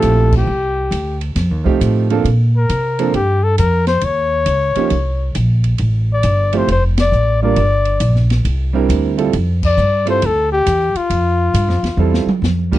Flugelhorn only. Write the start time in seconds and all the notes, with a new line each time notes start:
Already playing: A4
0.37 G4
2.57 A#4
3.15 G4
3.44 A4
3.59 A#4
3.87 C5
4.04 C#5
6.13 D5
6.57 C5
6.72 C5
7.00 D5
7.43 D5
9.66 D5
10.10 C5
10.26 A4
10.52 G4
10.97 F4